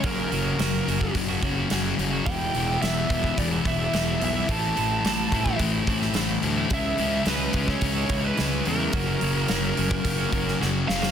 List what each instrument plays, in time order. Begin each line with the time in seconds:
0.02 fingered electric bass F#1, clean electric guitar F#2 C#3 F#3 A#3 C#4 F#4, lead electric guitar A#4, kick, open hi-hat
0.31 fingered electric bass F#1, distorted electric guitar F#2 C#3, clean electric guitar F#3 A#3 C#4 F#4, open hi-hat
0.45 clean electric guitar F#3 A#3 C#4 F#4
0.58 fingered electric bass F#1, clean electric guitar F#2 C#3 F#3 A#3 C#4 F#4, snare, open hi-hat
0.86 fingered electric bass F#1, distorted electric guitar F#2 C#3, clean electric guitar F#3 A#3 C#4 F#4, open hi-hat
1.00 clean electric guitar F#3 A#3 C#4 F#4, kick
1.15 fingered electric bass F#1, distorted electric guitar F#2 C#3 F#3, kick, open hi-hat
1.29 clean electric guitar F#3 A#3 C#4 F#4
1.42 fingered electric bass F#1, distorted electric guitar F#2 C#3, clean electric guitar F#3 A#3 C#4 F#4, kick, open hi-hat
1.56 clean electric guitar F#3 A#3 C#4 F#4
1.70 fingered electric bass F#1, clean electric guitar F#2 C#3 F#3 A#3 C#4 F#4, snare, open hi-hat
1.83 clean electric guitar F#3 A#3 C#4 F#4
1.98 fingered electric bass F#1, distorted electric guitar F#2 C#3 F#3, open hi-hat
2.11 clean electric guitar F#3 A#3 C#4 F#4
2.26 fingered electric bass E1, clean electric guitar E2 B2 E3 G3 B3 E4, lead electric guitar G5, kick, open hi-hat
2.54 fingered electric bass E1, distorted electric guitar E2 B2, clean electric guitar E3 G3 B3 E4, open hi-hat
2.68 clean electric guitar E3 G3 B3 E4
2.82 fingered electric bass E1, clean electric guitar E2 B2 E3 G3 B3 E4, lead electric guitar E5, snare, open hi-hat
3.10 fingered electric bass E1, distorted electric guitar E2 B2, clean electric guitar E3 G3 B3 E4, kick, open hi-hat
3.24 clean electric guitar E3 G3 B3 E4, kick
3.38 fingered electric bass E1, distorted electric guitar E2 B2 E3, lead electric guitar D5, kick, open hi-hat
3.51 clean electric guitar E3 G3 B3 E4
3.65 fingered electric bass E1, distorted electric guitar E2 B2, clean electric guitar E3 G3 B3 E4, lead electric guitar E5, kick, open hi-hat
3.80 clean electric guitar E3 G3 B3 E4
3.93 fingered electric bass E1, clean electric guitar E2 B2 E3 G3 B3 E4, snare, open hi-hat
4.07 clean electric guitar E3 G3 B3 E4
4.21 fingered electric bass B1, distorted electric guitar E2 B2 E3, lead electric guitar E5, open hi-hat
4.35 clean electric guitar E3 G3 B3 E4
4.48 fingered electric bass A1, clean electric guitar A2 E3 A3 C4 E4, lead electric guitar A5, kick, open hi-hat
4.76 fingered electric bass A1, distorted electric guitar A2, clean electric guitar E3 A3 C4 E4, open hi-hat
4.90 clean electric guitar A3 C4 E4
5.05 fingered electric bass A1, clean electric guitar A2 E3 A3 C4 E4, snare, open hi-hat
5.32 fingered electric bass A1, distorted electric guitar A2, clean electric guitar E3 A3 C4 E4, kick, open hi-hat
5.46 clean electric guitar A3 C4 E4, kick
5.59 fingered electric bass A1, distorted electric guitar A2 E3 A3, kick, open hi-hat
5.73 clean electric guitar A3 C4 E4
5.87 fingered electric bass A1, distorted electric guitar A2, clean electric guitar E3 A3 C4 E4, kick, open hi-hat
6.00 clean electric guitar A3 C4 E4, snare
6.14 fingered electric bass A1, clean electric guitar A2 E3 A3 C4 E4, snare, open hi-hat
6.29 clean electric guitar A3 C4 E4
6.43 fingered electric bass D2, distorted electric guitar A2 E3 A3, open hi-hat
6.57 clean electric guitar A3 C4 E4
6.70 fingered electric bass C#2, clean electric guitar C#3 E3 G#3 C#4 E4, lead electric guitar E5, kick, open hi-hat
6.98 fingered electric bass C#2, distorted electric guitar C#3, clean electric guitar E3 G#3 C#4 E4, open hi-hat
7.13 clean electric guitar G#3 C#4 E4
7.26 fingered electric bass C#2, clean electric guitar C#3 E3 G#3 C#4 E4, lead electric guitar B4, snare, open hi-hat
7.53 fingered electric bass C#2, distorted electric guitar C#3, clean electric guitar E3 G#3 C#4 E4, kick, open hi-hat
7.68 clean electric guitar G#3 C#4 E4, lead electric guitar C#5, kick, snare
7.81 fingered electric bass C#2, distorted electric guitar C#3 G#3 C#4, kick, open hi-hat
7.95 clean electric guitar G#3 C#4 E4
8.09 fingered electric bass C#2, distorted electric guitar C#3, clean electric guitar E3 G#3 C#4 E4, kick, open hi-hat
8.23 clean electric guitar G#3 C#4 E4, lead electric guitar B4
8.37 fingered electric bass C#2, clean electric guitar C#3 E3 G#3 C#4 E4, snare, open hi-hat
8.51 clean electric guitar G#3 C#4 E4
8.65 fingered electric bass E2, distorted electric guitar C#3 G#3 C#4, lead electric guitar A#4, open hi-hat
8.79 clean electric guitar G#3 C#4 E4
8.93 fingered electric bass F#1, clean electric guitar F#2 C#3 F#3 A#3 C#4 F#4, kick, open hi-hat
9.20 fingered electric bass F#1, distorted electric guitar F#2 C#3, clean electric guitar F#3 A#3 C#4 F#4, open hi-hat
9.34 clean electric guitar F#3 A#3 C#4 F#4
9.47 fingered electric bass F#1, clean electric guitar F#2 C#3 F#3 A#3 C#4 F#4, snare, open hi-hat
9.76 fingered electric bass F#1, distorted electric guitar F#2 C#3, clean electric guitar F#3 A#3 C#4 F#4, open hi-hat
9.91 clean electric guitar F#3 A#3 C#4 F#4, kick
10.05 fingered electric bass F#1, distorted electric guitar F#2 C#3 F#3, kick, open hi-hat
10.18 clean electric guitar F#3 A#3 C#4 F#4
10.31 fingered electric bass F#1, distorted electric guitar F#2 C#3, clean electric guitar F#3 A#3 C#4 F#4, kick, open hi-hat
10.46 clean electric guitar F#3 A#3 C#4 F#4, snare
10.60 fingered electric bass F#1, clean electric guitar F#2 C#3 F#3 A#3 C#4 F#4, snare
10.73 clean electric guitar F#3 A#3 C#4 F#4
10.87 fingered electric bass F#1, distorted electric guitar F#2 C#3 F#3, lead electric guitar F5, snare
11.02 clean electric guitar F#3 A#3 C#4 F#4, snare